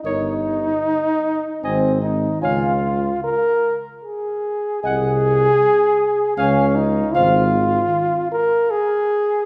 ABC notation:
X:1
M:3/4
L:1/8
Q:1/4=76
K:Dblyd
V:1 name="Trumpet"
e z3 a z | a z4 z | a z3 a z | [K:Fdor] f z4 z |]
V:2 name="Flugelhorn"
d z3 e z | f z4 z | _g z3 f z | [K:Fdor] f z4 z |]
V:3 name="French horn"
B z3 c z | d z4 z | e z3 d z | [K:Fdor] c z4 z |]
V:4 name="Trombone"
E4 C E | F2 B z A2 | A4 D E | [K:Fdor] F3 B A2 |]
V:5 name="Tuba" clef=bass
G,,,2 z2 A,,,2 | D,,2 z4 | C,,2 z2 D,,2 | [K:Fdor] A,,,2 z4 |]